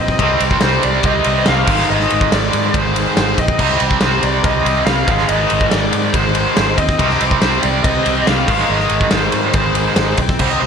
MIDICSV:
0, 0, Header, 1, 6, 480
1, 0, Start_track
1, 0, Tempo, 425230
1, 224, Time_signature, 4, 2, 24, 8
1, 12040, End_track
2, 0, Start_track
2, 0, Title_t, "Lead electric guitar"
2, 0, Program_c, 0, 29
2, 0, Note_on_c, 0, 75, 101
2, 428, Note_off_c, 0, 75, 0
2, 701, Note_on_c, 0, 72, 86
2, 924, Note_off_c, 0, 72, 0
2, 949, Note_on_c, 0, 74, 87
2, 1169, Note_off_c, 0, 74, 0
2, 1194, Note_on_c, 0, 75, 98
2, 1634, Note_off_c, 0, 75, 0
2, 1671, Note_on_c, 0, 77, 107
2, 2113, Note_off_c, 0, 77, 0
2, 2147, Note_on_c, 0, 75, 106
2, 2590, Note_off_c, 0, 75, 0
2, 2626, Note_on_c, 0, 74, 90
2, 3105, Note_on_c, 0, 72, 91
2, 3118, Note_off_c, 0, 74, 0
2, 3549, Note_off_c, 0, 72, 0
2, 3587, Note_on_c, 0, 72, 87
2, 3828, Note_on_c, 0, 75, 104
2, 3831, Note_off_c, 0, 72, 0
2, 4271, Note_off_c, 0, 75, 0
2, 4545, Note_on_c, 0, 72, 85
2, 4786, Note_on_c, 0, 74, 92
2, 4791, Note_off_c, 0, 72, 0
2, 5014, Note_off_c, 0, 74, 0
2, 5019, Note_on_c, 0, 75, 100
2, 5467, Note_off_c, 0, 75, 0
2, 5483, Note_on_c, 0, 77, 99
2, 5961, Note_off_c, 0, 77, 0
2, 5966, Note_on_c, 0, 75, 101
2, 6431, Note_off_c, 0, 75, 0
2, 6435, Note_on_c, 0, 74, 95
2, 6913, Note_on_c, 0, 72, 93
2, 6944, Note_off_c, 0, 74, 0
2, 7399, Note_off_c, 0, 72, 0
2, 7412, Note_on_c, 0, 72, 89
2, 7640, Note_off_c, 0, 72, 0
2, 7649, Note_on_c, 0, 75, 104
2, 8102, Note_off_c, 0, 75, 0
2, 8372, Note_on_c, 0, 72, 80
2, 8609, Note_on_c, 0, 74, 91
2, 8625, Note_off_c, 0, 72, 0
2, 8840, Note_off_c, 0, 74, 0
2, 8844, Note_on_c, 0, 75, 96
2, 9337, Note_off_c, 0, 75, 0
2, 9341, Note_on_c, 0, 77, 92
2, 9823, Note_off_c, 0, 77, 0
2, 9827, Note_on_c, 0, 75, 101
2, 10292, Note_on_c, 0, 72, 84
2, 10320, Note_off_c, 0, 75, 0
2, 10744, Note_off_c, 0, 72, 0
2, 10778, Note_on_c, 0, 72, 81
2, 11458, Note_off_c, 0, 72, 0
2, 11745, Note_on_c, 0, 72, 82
2, 11849, Note_off_c, 0, 72, 0
2, 11849, Note_on_c, 0, 75, 90
2, 11967, Note_off_c, 0, 75, 0
2, 11971, Note_on_c, 0, 72, 81
2, 12040, Note_off_c, 0, 72, 0
2, 12040, End_track
3, 0, Start_track
3, 0, Title_t, "Distorted electric guitar"
3, 0, Program_c, 1, 30
3, 0, Note_on_c, 1, 60, 89
3, 219, Note_on_c, 1, 48, 82
3, 233, Note_on_c, 1, 55, 90
3, 238, Note_off_c, 1, 60, 0
3, 242, Note_on_c, 1, 60, 97
3, 1405, Note_off_c, 1, 48, 0
3, 1406, Note_off_c, 1, 60, 0
3, 1410, Note_on_c, 1, 60, 88
3, 1412, Note_off_c, 1, 55, 0
3, 1424, Note_on_c, 1, 55, 80
3, 1441, Note_on_c, 1, 48, 68
3, 1640, Note_off_c, 1, 48, 0
3, 1648, Note_off_c, 1, 55, 0
3, 1654, Note_on_c, 1, 48, 81
3, 1674, Note_on_c, 1, 55, 81
3, 1676, Note_off_c, 1, 60, 0
3, 1680, Note_on_c, 1, 60, 86
3, 1883, Note_off_c, 1, 48, 0
3, 1890, Note_on_c, 1, 44, 91
3, 1893, Note_off_c, 1, 55, 0
3, 1906, Note_on_c, 1, 51, 98
3, 1925, Note_on_c, 1, 56, 100
3, 3069, Note_off_c, 1, 44, 0
3, 3079, Note_off_c, 1, 51, 0
3, 3083, Note_on_c, 1, 44, 78
3, 3091, Note_off_c, 1, 56, 0
3, 3093, Note_on_c, 1, 51, 77
3, 3105, Note_on_c, 1, 56, 84
3, 3312, Note_off_c, 1, 56, 0
3, 3317, Note_off_c, 1, 44, 0
3, 3322, Note_off_c, 1, 51, 0
3, 3326, Note_on_c, 1, 56, 80
3, 3344, Note_on_c, 1, 51, 81
3, 3356, Note_on_c, 1, 44, 73
3, 3799, Note_off_c, 1, 56, 0
3, 3808, Note_off_c, 1, 51, 0
3, 3814, Note_off_c, 1, 44, 0
3, 4042, Note_on_c, 1, 48, 81
3, 4062, Note_on_c, 1, 55, 88
3, 4069, Note_off_c, 1, 60, 0
3, 4074, Note_on_c, 1, 60, 100
3, 5238, Note_off_c, 1, 48, 0
3, 5248, Note_off_c, 1, 55, 0
3, 5250, Note_off_c, 1, 60, 0
3, 5255, Note_on_c, 1, 60, 84
3, 5266, Note_on_c, 1, 55, 74
3, 5277, Note_on_c, 1, 48, 64
3, 5475, Note_off_c, 1, 48, 0
3, 5489, Note_off_c, 1, 55, 0
3, 5489, Note_on_c, 1, 48, 78
3, 5510, Note_on_c, 1, 55, 87
3, 5519, Note_off_c, 1, 60, 0
3, 5524, Note_on_c, 1, 60, 85
3, 5721, Note_off_c, 1, 48, 0
3, 5726, Note_on_c, 1, 44, 86
3, 5731, Note_off_c, 1, 55, 0
3, 5744, Note_on_c, 1, 51, 96
3, 5752, Note_on_c, 1, 56, 94
3, 6910, Note_off_c, 1, 44, 0
3, 6924, Note_on_c, 1, 44, 82
3, 6929, Note_off_c, 1, 51, 0
3, 6933, Note_off_c, 1, 56, 0
3, 6941, Note_on_c, 1, 51, 81
3, 6956, Note_on_c, 1, 56, 98
3, 7159, Note_off_c, 1, 44, 0
3, 7161, Note_off_c, 1, 56, 0
3, 7167, Note_off_c, 1, 51, 0
3, 7175, Note_on_c, 1, 56, 92
3, 7191, Note_on_c, 1, 51, 83
3, 7203, Note_on_c, 1, 44, 72
3, 7644, Note_off_c, 1, 56, 0
3, 7653, Note_off_c, 1, 51, 0
3, 7658, Note_off_c, 1, 44, 0
3, 7880, Note_on_c, 1, 48, 82
3, 7895, Note_on_c, 1, 55, 92
3, 7903, Note_off_c, 1, 60, 0
3, 7908, Note_on_c, 1, 60, 105
3, 9077, Note_off_c, 1, 48, 0
3, 9084, Note_off_c, 1, 60, 0
3, 9085, Note_off_c, 1, 55, 0
3, 9088, Note_on_c, 1, 60, 85
3, 9102, Note_on_c, 1, 55, 81
3, 9118, Note_on_c, 1, 48, 70
3, 9309, Note_off_c, 1, 48, 0
3, 9322, Note_on_c, 1, 48, 74
3, 9323, Note_off_c, 1, 55, 0
3, 9336, Note_on_c, 1, 55, 83
3, 9343, Note_off_c, 1, 60, 0
3, 9348, Note_on_c, 1, 60, 88
3, 9557, Note_on_c, 1, 44, 89
3, 9558, Note_off_c, 1, 48, 0
3, 9565, Note_off_c, 1, 55, 0
3, 9574, Note_on_c, 1, 51, 94
3, 9588, Note_on_c, 1, 56, 100
3, 10754, Note_off_c, 1, 44, 0
3, 10765, Note_off_c, 1, 51, 0
3, 10767, Note_on_c, 1, 44, 86
3, 10772, Note_off_c, 1, 56, 0
3, 10780, Note_on_c, 1, 51, 83
3, 10791, Note_on_c, 1, 56, 91
3, 10992, Note_off_c, 1, 56, 0
3, 11002, Note_off_c, 1, 44, 0
3, 11006, Note_on_c, 1, 56, 88
3, 11008, Note_off_c, 1, 51, 0
3, 11023, Note_on_c, 1, 51, 88
3, 11036, Note_on_c, 1, 44, 78
3, 11482, Note_off_c, 1, 56, 0
3, 11490, Note_off_c, 1, 51, 0
3, 11497, Note_off_c, 1, 44, 0
3, 12040, Note_off_c, 1, 60, 0
3, 12040, End_track
4, 0, Start_track
4, 0, Title_t, "Overdriven electric guitar"
4, 0, Program_c, 2, 29
4, 0, Note_on_c, 2, 60, 94
4, 237, Note_off_c, 2, 60, 0
4, 11743, Note_on_c, 2, 48, 93
4, 11753, Note_on_c, 2, 55, 85
4, 11757, Note_on_c, 2, 60, 84
4, 11971, Note_off_c, 2, 48, 0
4, 11976, Note_off_c, 2, 55, 0
4, 11978, Note_off_c, 2, 60, 0
4, 11999, Note_on_c, 2, 48, 69
4, 12005, Note_on_c, 2, 55, 70
4, 12040, Note_off_c, 2, 48, 0
4, 12040, Note_off_c, 2, 55, 0
4, 12040, End_track
5, 0, Start_track
5, 0, Title_t, "Fingered electric bass"
5, 0, Program_c, 3, 33
5, 0, Note_on_c, 3, 34, 85
5, 156, Note_off_c, 3, 34, 0
5, 210, Note_on_c, 3, 36, 103
5, 394, Note_off_c, 3, 36, 0
5, 455, Note_on_c, 3, 36, 91
5, 637, Note_off_c, 3, 36, 0
5, 701, Note_on_c, 3, 36, 92
5, 880, Note_off_c, 3, 36, 0
5, 948, Note_on_c, 3, 36, 85
5, 1125, Note_off_c, 3, 36, 0
5, 1171, Note_on_c, 3, 36, 96
5, 1354, Note_off_c, 3, 36, 0
5, 1420, Note_on_c, 3, 36, 85
5, 1600, Note_off_c, 3, 36, 0
5, 1669, Note_on_c, 3, 36, 99
5, 1845, Note_off_c, 3, 36, 0
5, 1894, Note_on_c, 3, 32, 91
5, 2076, Note_off_c, 3, 32, 0
5, 2149, Note_on_c, 3, 32, 102
5, 2325, Note_off_c, 3, 32, 0
5, 2398, Note_on_c, 3, 32, 87
5, 2571, Note_off_c, 3, 32, 0
5, 2623, Note_on_c, 3, 32, 87
5, 2801, Note_off_c, 3, 32, 0
5, 2865, Note_on_c, 3, 44, 85
5, 3042, Note_off_c, 3, 44, 0
5, 3090, Note_on_c, 3, 32, 99
5, 3453, Note_off_c, 3, 32, 0
5, 3588, Note_on_c, 3, 32, 93
5, 3764, Note_off_c, 3, 32, 0
5, 3815, Note_on_c, 3, 34, 89
5, 3997, Note_off_c, 3, 34, 0
5, 4048, Note_on_c, 3, 36, 99
5, 4232, Note_off_c, 3, 36, 0
5, 4298, Note_on_c, 3, 36, 84
5, 4478, Note_off_c, 3, 36, 0
5, 4542, Note_on_c, 3, 36, 94
5, 4721, Note_off_c, 3, 36, 0
5, 4774, Note_on_c, 3, 36, 88
5, 4956, Note_off_c, 3, 36, 0
5, 5012, Note_on_c, 3, 36, 94
5, 5195, Note_off_c, 3, 36, 0
5, 5251, Note_on_c, 3, 36, 97
5, 5434, Note_off_c, 3, 36, 0
5, 5490, Note_on_c, 3, 36, 99
5, 5674, Note_off_c, 3, 36, 0
5, 5729, Note_on_c, 3, 32, 88
5, 5913, Note_off_c, 3, 32, 0
5, 5972, Note_on_c, 3, 32, 94
5, 6155, Note_off_c, 3, 32, 0
5, 6228, Note_on_c, 3, 32, 89
5, 6405, Note_off_c, 3, 32, 0
5, 6465, Note_on_c, 3, 32, 98
5, 6643, Note_off_c, 3, 32, 0
5, 6698, Note_on_c, 3, 44, 79
5, 6879, Note_off_c, 3, 44, 0
5, 6927, Note_on_c, 3, 32, 89
5, 7291, Note_off_c, 3, 32, 0
5, 7427, Note_on_c, 3, 32, 100
5, 7605, Note_off_c, 3, 32, 0
5, 7655, Note_on_c, 3, 39, 90
5, 7837, Note_off_c, 3, 39, 0
5, 7893, Note_on_c, 3, 36, 101
5, 8076, Note_off_c, 3, 36, 0
5, 8139, Note_on_c, 3, 36, 85
5, 8320, Note_off_c, 3, 36, 0
5, 8373, Note_on_c, 3, 36, 94
5, 8556, Note_off_c, 3, 36, 0
5, 8621, Note_on_c, 3, 36, 87
5, 8801, Note_off_c, 3, 36, 0
5, 8859, Note_on_c, 3, 36, 98
5, 9040, Note_off_c, 3, 36, 0
5, 9099, Note_on_c, 3, 36, 98
5, 9280, Note_off_c, 3, 36, 0
5, 9343, Note_on_c, 3, 36, 101
5, 9522, Note_off_c, 3, 36, 0
5, 9573, Note_on_c, 3, 32, 88
5, 9756, Note_off_c, 3, 32, 0
5, 9817, Note_on_c, 3, 32, 100
5, 9998, Note_off_c, 3, 32, 0
5, 10052, Note_on_c, 3, 32, 93
5, 10235, Note_off_c, 3, 32, 0
5, 10289, Note_on_c, 3, 32, 95
5, 10473, Note_off_c, 3, 32, 0
5, 10534, Note_on_c, 3, 44, 82
5, 10717, Note_off_c, 3, 44, 0
5, 10770, Note_on_c, 3, 32, 100
5, 11135, Note_off_c, 3, 32, 0
5, 11256, Note_on_c, 3, 32, 103
5, 11439, Note_off_c, 3, 32, 0
5, 11495, Note_on_c, 3, 35, 88
5, 11740, Note_off_c, 3, 35, 0
5, 11740, Note_on_c, 3, 36, 91
5, 11902, Note_off_c, 3, 36, 0
5, 11986, Note_on_c, 3, 36, 83
5, 12040, Note_off_c, 3, 36, 0
5, 12040, End_track
6, 0, Start_track
6, 0, Title_t, "Drums"
6, 95, Note_on_c, 9, 36, 88
6, 98, Note_on_c, 9, 38, 36
6, 208, Note_off_c, 9, 36, 0
6, 211, Note_off_c, 9, 38, 0
6, 215, Note_on_c, 9, 36, 99
6, 219, Note_on_c, 9, 51, 98
6, 328, Note_off_c, 9, 36, 0
6, 332, Note_off_c, 9, 51, 0
6, 456, Note_on_c, 9, 51, 77
6, 569, Note_off_c, 9, 51, 0
6, 574, Note_on_c, 9, 36, 83
6, 685, Note_on_c, 9, 38, 107
6, 685, Note_on_c, 9, 51, 98
6, 687, Note_off_c, 9, 36, 0
6, 797, Note_off_c, 9, 38, 0
6, 797, Note_off_c, 9, 51, 0
6, 936, Note_on_c, 9, 51, 71
6, 1049, Note_off_c, 9, 51, 0
6, 1165, Note_on_c, 9, 51, 96
6, 1173, Note_on_c, 9, 36, 113
6, 1278, Note_off_c, 9, 51, 0
6, 1286, Note_off_c, 9, 36, 0
6, 1404, Note_on_c, 9, 51, 75
6, 1517, Note_off_c, 9, 51, 0
6, 1644, Note_on_c, 9, 38, 105
6, 1644, Note_on_c, 9, 51, 95
6, 1757, Note_off_c, 9, 38, 0
6, 1757, Note_off_c, 9, 51, 0
6, 1888, Note_on_c, 9, 49, 97
6, 1892, Note_on_c, 9, 36, 101
6, 2001, Note_off_c, 9, 49, 0
6, 2005, Note_off_c, 9, 36, 0
6, 2017, Note_on_c, 9, 38, 33
6, 2129, Note_off_c, 9, 38, 0
6, 2255, Note_on_c, 9, 38, 33
6, 2368, Note_off_c, 9, 38, 0
6, 2375, Note_on_c, 9, 51, 71
6, 2488, Note_off_c, 9, 51, 0
6, 2496, Note_on_c, 9, 36, 86
6, 2609, Note_off_c, 9, 36, 0
6, 2621, Note_on_c, 9, 38, 111
6, 2621, Note_on_c, 9, 51, 104
6, 2734, Note_off_c, 9, 38, 0
6, 2734, Note_off_c, 9, 51, 0
6, 2858, Note_on_c, 9, 51, 75
6, 2971, Note_off_c, 9, 51, 0
6, 3095, Note_on_c, 9, 36, 109
6, 3099, Note_on_c, 9, 51, 102
6, 3208, Note_off_c, 9, 36, 0
6, 3212, Note_off_c, 9, 51, 0
6, 3342, Note_on_c, 9, 51, 86
6, 3455, Note_off_c, 9, 51, 0
6, 3576, Note_on_c, 9, 38, 113
6, 3576, Note_on_c, 9, 51, 100
6, 3689, Note_off_c, 9, 38, 0
6, 3689, Note_off_c, 9, 51, 0
6, 3814, Note_on_c, 9, 51, 75
6, 3815, Note_on_c, 9, 36, 77
6, 3927, Note_off_c, 9, 51, 0
6, 3928, Note_off_c, 9, 36, 0
6, 3932, Note_on_c, 9, 36, 95
6, 4045, Note_off_c, 9, 36, 0
6, 4052, Note_on_c, 9, 57, 104
6, 4053, Note_on_c, 9, 36, 95
6, 4164, Note_off_c, 9, 57, 0
6, 4166, Note_off_c, 9, 36, 0
6, 4173, Note_on_c, 9, 38, 31
6, 4286, Note_off_c, 9, 38, 0
6, 4288, Note_on_c, 9, 51, 72
6, 4401, Note_off_c, 9, 51, 0
6, 4411, Note_on_c, 9, 36, 82
6, 4523, Note_off_c, 9, 36, 0
6, 4523, Note_on_c, 9, 38, 105
6, 4523, Note_on_c, 9, 51, 89
6, 4636, Note_off_c, 9, 38, 0
6, 4636, Note_off_c, 9, 51, 0
6, 4772, Note_on_c, 9, 51, 74
6, 4885, Note_off_c, 9, 51, 0
6, 5011, Note_on_c, 9, 51, 91
6, 5013, Note_on_c, 9, 36, 110
6, 5124, Note_off_c, 9, 51, 0
6, 5126, Note_off_c, 9, 36, 0
6, 5263, Note_on_c, 9, 51, 74
6, 5376, Note_off_c, 9, 51, 0
6, 5493, Note_on_c, 9, 38, 107
6, 5493, Note_on_c, 9, 51, 94
6, 5606, Note_off_c, 9, 38, 0
6, 5606, Note_off_c, 9, 51, 0
6, 5732, Note_on_c, 9, 36, 102
6, 5737, Note_on_c, 9, 51, 65
6, 5845, Note_off_c, 9, 36, 0
6, 5849, Note_off_c, 9, 51, 0
6, 5855, Note_on_c, 9, 38, 35
6, 5967, Note_on_c, 9, 51, 108
6, 5968, Note_off_c, 9, 38, 0
6, 6080, Note_off_c, 9, 51, 0
6, 6206, Note_on_c, 9, 51, 74
6, 6319, Note_off_c, 9, 51, 0
6, 6331, Note_on_c, 9, 36, 80
6, 6444, Note_off_c, 9, 36, 0
6, 6450, Note_on_c, 9, 38, 106
6, 6450, Note_on_c, 9, 51, 100
6, 6563, Note_off_c, 9, 38, 0
6, 6563, Note_off_c, 9, 51, 0
6, 6691, Note_on_c, 9, 51, 77
6, 6804, Note_off_c, 9, 51, 0
6, 6929, Note_on_c, 9, 51, 113
6, 6930, Note_on_c, 9, 36, 104
6, 7042, Note_off_c, 9, 51, 0
6, 7043, Note_off_c, 9, 36, 0
6, 7165, Note_on_c, 9, 51, 81
6, 7278, Note_off_c, 9, 51, 0
6, 7412, Note_on_c, 9, 38, 110
6, 7412, Note_on_c, 9, 51, 103
6, 7525, Note_off_c, 9, 38, 0
6, 7525, Note_off_c, 9, 51, 0
6, 7652, Note_on_c, 9, 36, 76
6, 7653, Note_on_c, 9, 51, 77
6, 7765, Note_off_c, 9, 36, 0
6, 7766, Note_off_c, 9, 51, 0
6, 7774, Note_on_c, 9, 36, 94
6, 7775, Note_on_c, 9, 38, 35
6, 7887, Note_off_c, 9, 36, 0
6, 7888, Note_off_c, 9, 38, 0
6, 7893, Note_on_c, 9, 36, 98
6, 7896, Note_on_c, 9, 51, 117
6, 8006, Note_off_c, 9, 36, 0
6, 8007, Note_on_c, 9, 38, 33
6, 8009, Note_off_c, 9, 51, 0
6, 8120, Note_off_c, 9, 38, 0
6, 8135, Note_on_c, 9, 51, 76
6, 8248, Note_off_c, 9, 51, 0
6, 8254, Note_on_c, 9, 36, 80
6, 8367, Note_off_c, 9, 36, 0
6, 8371, Note_on_c, 9, 38, 116
6, 8371, Note_on_c, 9, 51, 96
6, 8484, Note_off_c, 9, 38, 0
6, 8484, Note_off_c, 9, 51, 0
6, 8611, Note_on_c, 9, 51, 78
6, 8724, Note_off_c, 9, 51, 0
6, 8854, Note_on_c, 9, 36, 120
6, 8857, Note_on_c, 9, 51, 99
6, 8967, Note_off_c, 9, 36, 0
6, 8970, Note_off_c, 9, 51, 0
6, 9096, Note_on_c, 9, 51, 75
6, 9208, Note_off_c, 9, 51, 0
6, 9338, Note_on_c, 9, 38, 104
6, 9338, Note_on_c, 9, 51, 89
6, 9451, Note_off_c, 9, 38, 0
6, 9451, Note_off_c, 9, 51, 0
6, 9573, Note_on_c, 9, 36, 104
6, 9576, Note_on_c, 9, 49, 94
6, 9686, Note_off_c, 9, 36, 0
6, 9689, Note_off_c, 9, 49, 0
6, 9691, Note_on_c, 9, 38, 36
6, 9804, Note_off_c, 9, 38, 0
6, 9932, Note_on_c, 9, 38, 33
6, 10041, Note_on_c, 9, 51, 68
6, 10045, Note_off_c, 9, 38, 0
6, 10154, Note_off_c, 9, 51, 0
6, 10168, Note_on_c, 9, 36, 80
6, 10281, Note_off_c, 9, 36, 0
6, 10281, Note_on_c, 9, 38, 112
6, 10281, Note_on_c, 9, 51, 101
6, 10394, Note_off_c, 9, 38, 0
6, 10394, Note_off_c, 9, 51, 0
6, 10522, Note_on_c, 9, 51, 77
6, 10635, Note_off_c, 9, 51, 0
6, 10762, Note_on_c, 9, 51, 102
6, 10769, Note_on_c, 9, 36, 120
6, 10875, Note_off_c, 9, 51, 0
6, 10882, Note_off_c, 9, 36, 0
6, 11006, Note_on_c, 9, 51, 79
6, 11119, Note_off_c, 9, 51, 0
6, 11244, Note_on_c, 9, 38, 113
6, 11244, Note_on_c, 9, 51, 110
6, 11357, Note_off_c, 9, 38, 0
6, 11357, Note_off_c, 9, 51, 0
6, 11485, Note_on_c, 9, 51, 80
6, 11493, Note_on_c, 9, 36, 76
6, 11597, Note_off_c, 9, 51, 0
6, 11606, Note_off_c, 9, 36, 0
6, 11616, Note_on_c, 9, 36, 97
6, 11618, Note_on_c, 9, 38, 34
6, 11728, Note_off_c, 9, 36, 0
6, 11730, Note_off_c, 9, 38, 0
6, 11730, Note_on_c, 9, 57, 110
6, 11737, Note_on_c, 9, 36, 110
6, 11843, Note_off_c, 9, 57, 0
6, 11850, Note_off_c, 9, 36, 0
6, 12040, End_track
0, 0, End_of_file